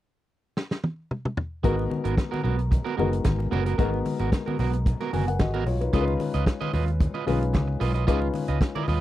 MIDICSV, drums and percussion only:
0, 0, Header, 1, 2, 480
1, 0, Start_track
1, 0, Tempo, 536673
1, 1469, Time_signature, 4, 2, 24, 8
1, 8055, End_track
2, 0, Start_track
2, 0, Title_t, "Drums"
2, 509, Note_on_c, 9, 38, 65
2, 598, Note_off_c, 9, 38, 0
2, 636, Note_on_c, 9, 38, 72
2, 726, Note_off_c, 9, 38, 0
2, 748, Note_on_c, 9, 48, 69
2, 838, Note_off_c, 9, 48, 0
2, 993, Note_on_c, 9, 47, 69
2, 1082, Note_off_c, 9, 47, 0
2, 1121, Note_on_c, 9, 47, 81
2, 1210, Note_off_c, 9, 47, 0
2, 1228, Note_on_c, 9, 43, 95
2, 1318, Note_off_c, 9, 43, 0
2, 1467, Note_on_c, 9, 42, 51
2, 1469, Note_on_c, 9, 36, 109
2, 1478, Note_on_c, 9, 62, 30
2, 1557, Note_off_c, 9, 42, 0
2, 1559, Note_off_c, 9, 36, 0
2, 1567, Note_off_c, 9, 62, 0
2, 1604, Note_on_c, 9, 62, 30
2, 1693, Note_off_c, 9, 62, 0
2, 1712, Note_on_c, 9, 63, 77
2, 1801, Note_off_c, 9, 63, 0
2, 1832, Note_on_c, 9, 42, 52
2, 1921, Note_off_c, 9, 42, 0
2, 1945, Note_on_c, 9, 36, 98
2, 1950, Note_on_c, 9, 38, 93
2, 1954, Note_on_c, 9, 42, 57
2, 1955, Note_on_c, 9, 62, 35
2, 2035, Note_off_c, 9, 36, 0
2, 2040, Note_off_c, 9, 38, 0
2, 2043, Note_off_c, 9, 42, 0
2, 2045, Note_off_c, 9, 62, 0
2, 2090, Note_on_c, 9, 62, 33
2, 2090, Note_on_c, 9, 63, 50
2, 2179, Note_off_c, 9, 62, 0
2, 2179, Note_off_c, 9, 63, 0
2, 2192, Note_on_c, 9, 64, 67
2, 2282, Note_off_c, 9, 64, 0
2, 2314, Note_on_c, 9, 42, 41
2, 2404, Note_off_c, 9, 42, 0
2, 2430, Note_on_c, 9, 36, 101
2, 2435, Note_on_c, 9, 62, 38
2, 2435, Note_on_c, 9, 64, 69
2, 2438, Note_on_c, 9, 42, 58
2, 2520, Note_off_c, 9, 36, 0
2, 2525, Note_off_c, 9, 62, 0
2, 2525, Note_off_c, 9, 64, 0
2, 2528, Note_off_c, 9, 42, 0
2, 2562, Note_on_c, 9, 62, 28
2, 2652, Note_off_c, 9, 62, 0
2, 2677, Note_on_c, 9, 63, 76
2, 2767, Note_off_c, 9, 63, 0
2, 2798, Note_on_c, 9, 42, 46
2, 2887, Note_off_c, 9, 42, 0
2, 2901, Note_on_c, 9, 42, 58
2, 2904, Note_on_c, 9, 38, 84
2, 2910, Note_on_c, 9, 62, 33
2, 2910, Note_on_c, 9, 63, 68
2, 2912, Note_on_c, 9, 36, 90
2, 2990, Note_off_c, 9, 42, 0
2, 2993, Note_off_c, 9, 38, 0
2, 2999, Note_off_c, 9, 62, 0
2, 2999, Note_off_c, 9, 63, 0
2, 3001, Note_off_c, 9, 36, 0
2, 3042, Note_on_c, 9, 62, 37
2, 3131, Note_off_c, 9, 62, 0
2, 3157, Note_on_c, 9, 64, 85
2, 3246, Note_off_c, 9, 64, 0
2, 3275, Note_on_c, 9, 42, 46
2, 3364, Note_off_c, 9, 42, 0
2, 3387, Note_on_c, 9, 42, 50
2, 3389, Note_on_c, 9, 36, 118
2, 3396, Note_on_c, 9, 62, 31
2, 3477, Note_off_c, 9, 42, 0
2, 3478, Note_off_c, 9, 36, 0
2, 3486, Note_off_c, 9, 62, 0
2, 3523, Note_on_c, 9, 62, 27
2, 3612, Note_off_c, 9, 62, 0
2, 3626, Note_on_c, 9, 46, 61
2, 3630, Note_on_c, 9, 63, 70
2, 3715, Note_off_c, 9, 46, 0
2, 3719, Note_off_c, 9, 63, 0
2, 3750, Note_on_c, 9, 42, 49
2, 3839, Note_off_c, 9, 42, 0
2, 3865, Note_on_c, 9, 36, 89
2, 3867, Note_on_c, 9, 62, 37
2, 3869, Note_on_c, 9, 38, 114
2, 3873, Note_on_c, 9, 42, 58
2, 3954, Note_off_c, 9, 36, 0
2, 3956, Note_off_c, 9, 62, 0
2, 3959, Note_off_c, 9, 38, 0
2, 3962, Note_off_c, 9, 42, 0
2, 4004, Note_on_c, 9, 62, 35
2, 4004, Note_on_c, 9, 63, 57
2, 4093, Note_off_c, 9, 62, 0
2, 4093, Note_off_c, 9, 63, 0
2, 4106, Note_on_c, 9, 64, 70
2, 4113, Note_on_c, 9, 46, 51
2, 4196, Note_off_c, 9, 64, 0
2, 4203, Note_off_c, 9, 46, 0
2, 4232, Note_on_c, 9, 42, 40
2, 4321, Note_off_c, 9, 42, 0
2, 4347, Note_on_c, 9, 36, 109
2, 4352, Note_on_c, 9, 62, 34
2, 4352, Note_on_c, 9, 64, 74
2, 4354, Note_on_c, 9, 42, 61
2, 4437, Note_off_c, 9, 36, 0
2, 4441, Note_off_c, 9, 62, 0
2, 4441, Note_off_c, 9, 64, 0
2, 4443, Note_off_c, 9, 42, 0
2, 4475, Note_on_c, 9, 38, 30
2, 4479, Note_on_c, 9, 62, 26
2, 4565, Note_off_c, 9, 38, 0
2, 4568, Note_off_c, 9, 62, 0
2, 4591, Note_on_c, 9, 46, 65
2, 4596, Note_on_c, 9, 63, 69
2, 4680, Note_off_c, 9, 46, 0
2, 4685, Note_off_c, 9, 63, 0
2, 4721, Note_on_c, 9, 42, 50
2, 4810, Note_off_c, 9, 42, 0
2, 4822, Note_on_c, 9, 42, 52
2, 4825, Note_on_c, 9, 38, 93
2, 4828, Note_on_c, 9, 62, 35
2, 4828, Note_on_c, 9, 63, 74
2, 4831, Note_on_c, 9, 36, 93
2, 4911, Note_off_c, 9, 42, 0
2, 4915, Note_off_c, 9, 38, 0
2, 4918, Note_off_c, 9, 62, 0
2, 4918, Note_off_c, 9, 63, 0
2, 4921, Note_off_c, 9, 36, 0
2, 4957, Note_on_c, 9, 62, 35
2, 5046, Note_off_c, 9, 62, 0
2, 5068, Note_on_c, 9, 64, 80
2, 5075, Note_on_c, 9, 46, 65
2, 5158, Note_off_c, 9, 64, 0
2, 5164, Note_off_c, 9, 46, 0
2, 5199, Note_on_c, 9, 42, 47
2, 5288, Note_off_c, 9, 42, 0
2, 5305, Note_on_c, 9, 42, 53
2, 5308, Note_on_c, 9, 36, 116
2, 5310, Note_on_c, 9, 62, 33
2, 5395, Note_off_c, 9, 42, 0
2, 5398, Note_off_c, 9, 36, 0
2, 5399, Note_off_c, 9, 62, 0
2, 5436, Note_on_c, 9, 62, 29
2, 5526, Note_off_c, 9, 62, 0
2, 5544, Note_on_c, 9, 63, 74
2, 5549, Note_on_c, 9, 46, 63
2, 5634, Note_off_c, 9, 63, 0
2, 5638, Note_off_c, 9, 46, 0
2, 5667, Note_on_c, 9, 42, 53
2, 5757, Note_off_c, 9, 42, 0
2, 5782, Note_on_c, 9, 36, 102
2, 5787, Note_on_c, 9, 38, 100
2, 5791, Note_on_c, 9, 42, 55
2, 5871, Note_off_c, 9, 36, 0
2, 5877, Note_off_c, 9, 38, 0
2, 5880, Note_off_c, 9, 42, 0
2, 5917, Note_on_c, 9, 62, 33
2, 5917, Note_on_c, 9, 63, 56
2, 6006, Note_off_c, 9, 62, 0
2, 6006, Note_off_c, 9, 63, 0
2, 6024, Note_on_c, 9, 64, 70
2, 6030, Note_on_c, 9, 46, 49
2, 6113, Note_off_c, 9, 64, 0
2, 6119, Note_off_c, 9, 46, 0
2, 6151, Note_on_c, 9, 42, 41
2, 6241, Note_off_c, 9, 42, 0
2, 6265, Note_on_c, 9, 36, 121
2, 6265, Note_on_c, 9, 62, 38
2, 6265, Note_on_c, 9, 64, 73
2, 6271, Note_on_c, 9, 42, 59
2, 6355, Note_off_c, 9, 36, 0
2, 6355, Note_off_c, 9, 62, 0
2, 6355, Note_off_c, 9, 64, 0
2, 6360, Note_off_c, 9, 42, 0
2, 6392, Note_on_c, 9, 62, 28
2, 6482, Note_off_c, 9, 62, 0
2, 6508, Note_on_c, 9, 46, 61
2, 6510, Note_on_c, 9, 63, 78
2, 6597, Note_off_c, 9, 46, 0
2, 6599, Note_off_c, 9, 63, 0
2, 6641, Note_on_c, 9, 42, 48
2, 6731, Note_off_c, 9, 42, 0
2, 6742, Note_on_c, 9, 63, 73
2, 6746, Note_on_c, 9, 42, 51
2, 6750, Note_on_c, 9, 36, 88
2, 6750, Note_on_c, 9, 38, 89
2, 6832, Note_off_c, 9, 63, 0
2, 6836, Note_off_c, 9, 42, 0
2, 6839, Note_off_c, 9, 38, 0
2, 6840, Note_off_c, 9, 36, 0
2, 6987, Note_on_c, 9, 64, 83
2, 6990, Note_on_c, 9, 46, 58
2, 7076, Note_off_c, 9, 64, 0
2, 7080, Note_off_c, 9, 46, 0
2, 7114, Note_on_c, 9, 42, 43
2, 7204, Note_off_c, 9, 42, 0
2, 7225, Note_on_c, 9, 36, 108
2, 7226, Note_on_c, 9, 42, 58
2, 7226, Note_on_c, 9, 62, 29
2, 7315, Note_off_c, 9, 36, 0
2, 7315, Note_off_c, 9, 62, 0
2, 7316, Note_off_c, 9, 42, 0
2, 7350, Note_on_c, 9, 62, 32
2, 7439, Note_off_c, 9, 62, 0
2, 7456, Note_on_c, 9, 63, 73
2, 7467, Note_on_c, 9, 46, 63
2, 7545, Note_off_c, 9, 63, 0
2, 7556, Note_off_c, 9, 46, 0
2, 7583, Note_on_c, 9, 42, 50
2, 7672, Note_off_c, 9, 42, 0
2, 7699, Note_on_c, 9, 36, 105
2, 7705, Note_on_c, 9, 38, 98
2, 7709, Note_on_c, 9, 42, 59
2, 7788, Note_off_c, 9, 36, 0
2, 7795, Note_off_c, 9, 38, 0
2, 7798, Note_off_c, 9, 42, 0
2, 7832, Note_on_c, 9, 62, 33
2, 7832, Note_on_c, 9, 63, 51
2, 7922, Note_off_c, 9, 62, 0
2, 7922, Note_off_c, 9, 63, 0
2, 7939, Note_on_c, 9, 64, 74
2, 7947, Note_on_c, 9, 46, 53
2, 8028, Note_off_c, 9, 64, 0
2, 8037, Note_off_c, 9, 46, 0
2, 8055, End_track
0, 0, End_of_file